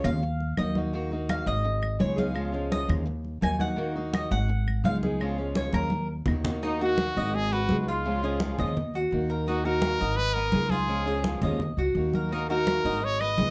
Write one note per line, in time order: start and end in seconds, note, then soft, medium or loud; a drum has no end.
0.00 0.54 D#2 loud
0.00 0.22 F3 medium
0.00 0.22 G#3 medium
0.00 0.22 C#4 medium
0.00 0.22 F4 medium
0.04 0.54 F5 loud
0.04 high conga soft
0.04 low conga medium
0.04 claves medium
0.22 muted steel-string acoustic guitar stroke medium
0.22 high conga soft
0.40 high conga soft
0.57 1.41 D#2 medium
0.57 0.75 D#3 medium
0.57 0.76 A#3 medium
0.57 0.76 D#4 medium
0.57 0.76 F#4 medium
0.57 0.75 D#5 medium
0.57 high conga medium
0.57 claves medium
0.75 0.92 A#3 medium
0.75 0.93 D#4 medium
0.75 0.93 F#4 medium
0.75 high conga medium
0.93 1.10 D#3 medium
0.93 1.11 A#3 medium
0.93 1.11 D#4 medium
0.93 1.11 F#4 medium
0.93 high conga soft
1.11 1.65 A#3 medium
1.11 1.64 D#4 medium
1.11 1.64 F#4 medium
1.11 high conga soft
1.29 1.47 F5 loud
1.29 high conga medium
1.29 claves medium
1.46 1.96 G#1 loud
1.46 1.97 D#5 loud
1.46 high conga soft
1.64 muted steel-string acoustic guitar stroke medium
1.64 high conga soft
1.82 high conga soft
1.82 claves medium
1.99 2.83 C#2 medium
1.99 2.17 G#3 medium
1.99 2.16 B3 medium
1.99 2.16 D#4 medium
1.99 2.15 G#4 medium
1.99 2.17 C#5 medium
1.99 high conga medium
2.16 2.34 G#3 medium
2.16 2.35 B3 medium
2.16 2.34 D#4 medium
2.16 2.34 G#4 medium
2.16 2.68 F5 medium
2.16 high conga medium
2.34 2.52 C#3 medium
2.34 2.52 F3 medium
2.34 2.52 G#3 medium
2.34 2.52 C#4 medium
2.34 2.51 F4 medium
2.34 high conga soft
2.34 claves medium
2.52 3.05 F3 medium
2.52 3.05 G#3 medium
2.52 3.06 C#4 medium
2.52 3.05 F4 medium
2.52 high conga soft
2.72 2.89 D#5 loud
2.72 high conga medium
2.88 3.38 D#2 loud
2.88 high conga soft
2.88 low conga medium
2.88 claves medium
3.06 muted steel-string acoustic guitar stroke medium
3.06 high conga soft
3.25 high conga soft
3.41 4.26 D#2 medium
3.41 3.59 D#3 soft
3.41 3.60 A#3 medium
3.41 3.59 D#4 medium
3.41 3.58 F#4 medium
3.41 3.60 G#5 loud
3.41 high conga medium
3.41 claves medium
3.59 3.76 A#3 medium
3.59 3.77 D#4 medium
3.59 3.77 F#4 medium
3.59 4.10 F#5 loud
3.59 high conga medium
3.76 3.94 D#3 medium
3.76 3.95 A#3 medium
3.76 3.95 D#4 medium
3.76 3.94 F#4 medium
3.76 high conga soft
3.96 4.49 A#3 medium
3.96 4.48 D#4 medium
3.96 4.48 F#4 medium
3.96 high conga soft
4.14 4.31 D#5 medium
4.14 high conga medium
4.14 claves medium
4.31 4.81 G#1 loud
4.31 4.81 F#5 loud
4.31 high conga soft
4.48 muted steel-string acoustic guitar stroke medium
4.48 high conga soft
4.67 high conga soft
4.67 claves medium
4.84 5.68 C#2 medium
4.84 5.02 G#3 soft
4.84 5.03 B3 medium
4.84 5.02 D#4 medium
4.84 5.01 G#4 medium
4.84 4.96 F5 medium
4.84 high conga medium
5.03 5.20 G#3 medium
5.03 5.21 B3 medium
5.03 5.20 D#4 medium
5.03 5.20 G#4 medium
5.03 high conga medium
5.20 5.37 C#3 medium
5.20 5.38 F3 medium
5.20 5.38 G#3 medium
5.20 5.37 C#4 medium
5.20 5.37 F4 medium
5.20 high conga soft
5.20 claves medium
5.38 5.91 F3 medium
5.38 5.91 G#3 medium
5.38 5.91 C#4 medium
5.38 5.91 F4 medium
5.38 high conga soft
5.55 5.74 C#5 medium
5.55 high conga medium
5.73 6.23 D#2 medium
5.73 6.07 A#4 loud
5.73 high conga medium
5.73 claves medium
5.90 muted steel-string acoustic guitar stroke medium
5.90 high conga medium
6.26 7.10 D#2 medium
6.26 6.44 D#3 medium
6.26 6.44 A#3 medium
6.26 6.44 D#4 medium
6.26 6.43 F#4 medium
6.26 low conga loud
6.26 claves medium
6.44 6.62 A#3 medium
6.44 6.62 D#4 medium
6.44 6.62 F#4 medium
6.44 low conga medium
6.62 6.80 D#3 medium
6.62 6.80 A#3 medium
6.62 6.80 D#4 medium
6.62 6.79 F#4 medium
6.62 high conga soft
6.80 6.98 A#3 medium
6.80 6.98 D#4 medium
6.80 6.98 F#4 medium
6.80 7.15 F#4 medium
6.80 7.36 F#4 loud
6.80 high conga soft
6.98 7.15 D#3 medium
6.98 7.16 A#3 soft
6.98 7.16 D#4 soft
6.98 7.16 F#4 medium
6.98 high conga medium
7.16 7.66 G#1 loud
7.16 7.34 A#3 medium
7.16 7.34 D#4 medium
7.16 7.34 F#4 medium
7.16 7.51 D#5 medium
7.16 high conga soft
7.33 7.54 G#4 loud
7.33 muted steel-string acoustic guitar stroke medium
7.33 high conga soft
7.51 7.79 F#4 loud
7.51 7.87 B4 medium
7.51 high conga soft
7.69 8.53 C#2 loud
7.69 8.04 G#3 medium
7.69 8.05 B3 medium
7.69 8.05 D#4 medium
7.69 8.05 G#4 medium
7.69 high conga medium
7.79 7.89 F#4 medium
7.88 8.59 F4 medium
7.88 8.22 F4 medium
8.05 8.22 C#3 medium
8.05 8.23 F3 medium
8.05 8.23 G#3 medium
8.05 8.22 C#4 medium
8.05 8.21 F4 medium
8.05 high conga soft
8.22 8.39 F3 medium
8.22 8.39 G#3 medium
8.22 8.40 C#4 medium
8.22 8.40 F4 medium
8.22 8.58 G#4 medium
8.22 high conga soft
8.40 8.58 F3 soft
8.40 8.58 G#3 medium
8.40 8.57 C#4 medium
8.40 8.57 F4 medium
8.40 high conga loud
8.58 9.09 D#2 medium
8.58 8.76 F3 medium
8.58 8.76 G#3 medium
8.58 8.76 C#4 medium
8.58 8.75 F4 medium
8.58 8.93 D#5 medium
8.58 high conga soft
8.58 low conga medium
8.76 muted steel-string acoustic guitar stroke medium
8.76 high conga soft
8.76 low conga medium
8.94 9.29 F#4 medium
8.94 high conga soft
9.11 9.95 D#2 loud
9.11 9.46 D#3 medium
9.11 9.47 A#3 soft
9.11 9.48 D#4 medium
9.11 9.48 F#4 medium
9.11 high conga soft
9.30 9.47 A#4 medium
9.47 9.64 D#3 medium
9.47 9.64 A#3 medium
9.47 9.65 D#4 medium
9.47 9.64 D#4 medium
9.47 9.67 F#4 loud
9.47 9.63 F#4 medium
9.47 high conga soft
9.64 9.82 A#3 medium
9.64 9.82 D#4 medium
9.64 9.82 F#4 medium
9.64 10.00 F#4 medium
9.64 10.18 A#4 loud
9.64 high conga soft
9.82 10.00 D#3 soft
9.82 10.00 A#3 soft
9.82 10.00 D#4 medium
9.82 9.99 F#4 medium
9.82 high conga loud
10.00 10.50 G#1 medium
10.00 10.17 A#3 medium
10.00 10.17 D#4 medium
10.00 10.18 F#4 medium
10.00 10.35 D#5 medium
10.00 high conga soft
10.16 10.35 B4 loud
10.16 muted steel-string acoustic guitar stroke medium
10.16 high conga soft
10.34 10.70 B3 medium
10.34 10.72 A#4 loud
10.34 high conga soft
10.52 11.37 C#2 loud
10.52 10.88 G#3 medium
10.52 10.88 B3 soft
10.52 10.88 D#4 medium
10.52 10.89 G#4 medium
10.52 high conga medium
10.70 11.06 F4 medium
10.70 11.42 G#4 loud
10.70 high conga medium
10.88 11.06 C#3 medium
10.88 11.06 F3 medium
10.88 11.06 G#3 medium
10.88 11.05 C#4 medium
10.88 11.04 F4 medium
10.88 high conga soft
11.06 11.23 F3 medium
11.06 11.24 G#3 medium
11.06 11.24 C#4 medium
11.06 11.24 F4 medium
11.06 11.42 G#4 medium
11.06 high conga soft
11.24 11.42 F3 soft
11.24 11.42 G#3 soft
11.24 11.42 C#4 medium
11.24 11.42 F4 medium
11.24 high conga loud
11.42 11.76 D#2 loud
11.42 11.61 F3 medium
11.42 11.61 G#3 medium
11.42 11.61 C#4 medium
11.42 11.60 F4 medium
11.42 11.77 D#5 medium
11.42 high conga soft
11.42 low conga medium
11.60 muted steel-string acoustic guitar stroke medium
11.60 high conga soft
11.60 low conga medium
11.77 11.94 C#2 medium
11.77 12.13 F#4 medium
11.77 high conga soft
11.95 12.79 D#2 medium
11.95 12.30 D#3 soft
11.95 12.31 A#3 medium
11.95 12.31 D#4 medium
11.95 12.32 F#4 medium
11.95 high conga soft
12.13 12.32 A#4 medium
12.13 high conga medium
12.31 12.48 D#3 medium
12.31 12.49 A#3 medium
12.31 12.49 D#4 medium
12.31 12.49 F#4 medium
12.31 12.48 A#4 medium
12.31 high conga soft
12.49 12.66 A#3 medium
12.49 12.67 D#4 medium
12.49 12.67 F#4 medium
12.49 12.84 F#4 medium
12.49 13.06 A#4 loud
12.49 high conga soft
12.67 12.84 D#3 medium
12.67 12.84 A#3 soft
12.67 12.84 D#4 medium
12.67 12.84 F#4 medium
12.67 high conga medium
12.67 claves medium
12.84 13.34 G#1 medium
12.84 13.02 A#3 medium
12.84 13.01 D#4 medium
12.84 13.02 F#4 medium
12.84 13.20 D#5 medium
12.84 high conga soft
13.02 13.22 C#5 loud
13.02 muted steel-string acoustic guitar stroke medium
13.02 high conga soft
13.20 13.50 B4 medium
13.20 13.50 D#5 loud
13.20 high conga soft
13.20 claves medium
13.37 13.50 C#2 medium
13.37 13.50 G#3 medium
13.37 13.50 B3 medium
13.37 13.50 D#4 medium
13.37 13.50 G#4 medium
13.37 high conga medium